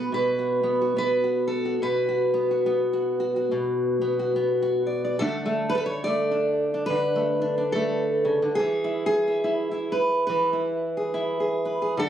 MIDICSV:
0, 0, Header, 1, 2, 480
1, 0, Start_track
1, 0, Tempo, 846262
1, 1030, Time_signature, 4, 2, 24, 8
1, 6858, End_track
2, 0, Start_track
2, 0, Title_t, "Steel-string acoustic guitar"
2, 0, Program_c, 0, 25
2, 0, Note_on_c, 0, 47, 66
2, 0, Note_on_c, 0, 59, 60
2, 0, Note_on_c, 0, 66, 94
2, 0, Note_on_c, 0, 71, 86
2, 67, Note_off_c, 0, 47, 0
2, 69, Note_off_c, 0, 66, 0
2, 69, Note_on_c, 0, 47, 66
2, 70, Note_off_c, 0, 71, 0
2, 80, Note_on_c, 0, 71, 92
2, 220, Note_on_c, 0, 66, 43
2, 353, Note_off_c, 0, 59, 0
2, 360, Note_on_c, 0, 59, 58
2, 460, Note_off_c, 0, 66, 0
2, 462, Note_on_c, 0, 66, 43
2, 540, Note_off_c, 0, 59, 0
2, 547, Note_on_c, 0, 59, 57
2, 551, Note_off_c, 0, 71, 0
2, 558, Note_on_c, 0, 71, 94
2, 700, Note_off_c, 0, 66, 0
2, 702, Note_on_c, 0, 66, 41
2, 834, Note_off_c, 0, 71, 0
2, 837, Note_on_c, 0, 69, 85
2, 935, Note_off_c, 0, 66, 0
2, 937, Note_on_c, 0, 66, 46
2, 1005, Note_off_c, 0, 59, 0
2, 1025, Note_off_c, 0, 47, 0
2, 1031, Note_off_c, 0, 69, 0
2, 1032, Note_on_c, 0, 47, 70
2, 1037, Note_on_c, 0, 71, 91
2, 1181, Note_off_c, 0, 66, 0
2, 1183, Note_on_c, 0, 66, 43
2, 1326, Note_on_c, 0, 59, 59
2, 1416, Note_off_c, 0, 66, 0
2, 1423, Note_on_c, 0, 66, 42
2, 1503, Note_off_c, 0, 59, 0
2, 1509, Note_on_c, 0, 59, 62
2, 1658, Note_off_c, 0, 66, 0
2, 1664, Note_on_c, 0, 66, 44
2, 1801, Note_off_c, 0, 66, 0
2, 1814, Note_on_c, 0, 66, 44
2, 1900, Note_off_c, 0, 66, 0
2, 1907, Note_on_c, 0, 66, 42
2, 1987, Note_off_c, 0, 47, 0
2, 1994, Note_on_c, 0, 47, 66
2, 2270, Note_off_c, 0, 59, 0
2, 2277, Note_on_c, 0, 59, 63
2, 2372, Note_off_c, 0, 66, 0
2, 2379, Note_on_c, 0, 66, 44
2, 2465, Note_off_c, 0, 59, 0
2, 2472, Note_on_c, 0, 59, 61
2, 2616, Note_off_c, 0, 66, 0
2, 2623, Note_on_c, 0, 66, 43
2, 2760, Note_on_c, 0, 74, 42
2, 2855, Note_off_c, 0, 74, 0
2, 2862, Note_on_c, 0, 74, 45
2, 2928, Note_off_c, 0, 59, 0
2, 2931, Note_off_c, 0, 74, 0
2, 2932, Note_off_c, 0, 66, 0
2, 2942, Note_off_c, 0, 71, 0
2, 2944, Note_on_c, 0, 69, 106
2, 2949, Note_on_c, 0, 50, 72
2, 2952, Note_off_c, 0, 47, 0
2, 2953, Note_on_c, 0, 57, 45
2, 2959, Note_on_c, 0, 62, 52
2, 3087, Note_off_c, 0, 57, 0
2, 3094, Note_on_c, 0, 57, 69
2, 3230, Note_on_c, 0, 71, 94
2, 3254, Note_off_c, 0, 69, 0
2, 3261, Note_on_c, 0, 69, 76
2, 3270, Note_off_c, 0, 71, 0
2, 3276, Note_on_c, 0, 71, 95
2, 3320, Note_off_c, 0, 71, 0
2, 3322, Note_on_c, 0, 73, 91
2, 3423, Note_off_c, 0, 73, 0
2, 3425, Note_on_c, 0, 74, 103
2, 3431, Note_off_c, 0, 57, 0
2, 3442, Note_on_c, 0, 57, 61
2, 3575, Note_off_c, 0, 62, 0
2, 3582, Note_on_c, 0, 62, 49
2, 3765, Note_off_c, 0, 69, 0
2, 3817, Note_off_c, 0, 62, 0
2, 3823, Note_on_c, 0, 62, 47
2, 3889, Note_off_c, 0, 74, 0
2, 3891, Note_on_c, 0, 71, 92
2, 3905, Note_off_c, 0, 50, 0
2, 3912, Note_on_c, 0, 50, 72
2, 4052, Note_off_c, 0, 57, 0
2, 4059, Note_on_c, 0, 57, 57
2, 4199, Note_off_c, 0, 62, 0
2, 4206, Note_on_c, 0, 62, 53
2, 4291, Note_off_c, 0, 62, 0
2, 4298, Note_on_c, 0, 62, 45
2, 4381, Note_on_c, 0, 69, 88
2, 4389, Note_off_c, 0, 57, 0
2, 4396, Note_on_c, 0, 57, 64
2, 4678, Note_on_c, 0, 49, 60
2, 4771, Note_off_c, 0, 50, 0
2, 4774, Note_off_c, 0, 49, 0
2, 4778, Note_on_c, 0, 50, 67
2, 4849, Note_off_c, 0, 62, 0
2, 4849, Note_off_c, 0, 69, 0
2, 4850, Note_off_c, 0, 57, 0
2, 4851, Note_on_c, 0, 68, 95
2, 4861, Note_off_c, 0, 71, 0
2, 4873, Note_off_c, 0, 50, 0
2, 4873, Note_on_c, 0, 52, 70
2, 5016, Note_on_c, 0, 64, 68
2, 5133, Note_off_c, 0, 68, 0
2, 5140, Note_on_c, 0, 68, 95
2, 5254, Note_off_c, 0, 64, 0
2, 5261, Note_on_c, 0, 64, 47
2, 5348, Note_off_c, 0, 64, 0
2, 5354, Note_on_c, 0, 64, 70
2, 5495, Note_off_c, 0, 64, 0
2, 5510, Note_on_c, 0, 64, 46
2, 5626, Note_on_c, 0, 71, 84
2, 5817, Note_off_c, 0, 71, 0
2, 5824, Note_on_c, 0, 71, 83
2, 5831, Note_off_c, 0, 52, 0
2, 5838, Note_on_c, 0, 52, 73
2, 5965, Note_off_c, 0, 64, 0
2, 5972, Note_on_c, 0, 64, 62
2, 6108, Note_off_c, 0, 68, 0
2, 6223, Note_on_c, 0, 68, 48
2, 6310, Note_off_c, 0, 64, 0
2, 6318, Note_on_c, 0, 64, 69
2, 6458, Note_off_c, 0, 68, 0
2, 6466, Note_on_c, 0, 68, 46
2, 6593, Note_off_c, 0, 71, 0
2, 6609, Note_on_c, 0, 71, 46
2, 6697, Note_off_c, 0, 68, 0
2, 6703, Note_on_c, 0, 68, 54
2, 6772, Note_off_c, 0, 64, 0
2, 6773, Note_off_c, 0, 68, 0
2, 6775, Note_off_c, 0, 71, 0
2, 6791, Note_on_c, 0, 50, 79
2, 6795, Note_off_c, 0, 52, 0
2, 6803, Note_on_c, 0, 69, 105
2, 6858, Note_off_c, 0, 50, 0
2, 6858, Note_off_c, 0, 69, 0
2, 6858, End_track
0, 0, End_of_file